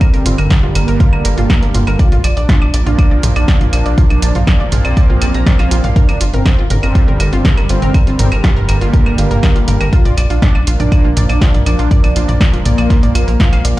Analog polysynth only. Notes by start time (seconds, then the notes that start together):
0.13 C4
0.75 A#3
1.99 F4
2.37 D4
2.86 D4
3.36 D4
3.73 D4
4.10 D4
4.72 C4
5.96 D4
6.34 C4
6.83 C4
7.33 C4
7.70 C4
8.07 C4
8.69 A#3
9.93 F4
10.30 D4
10.80 D4
11.29 D4
11.66 D4
12.04 D4
12.65 A#3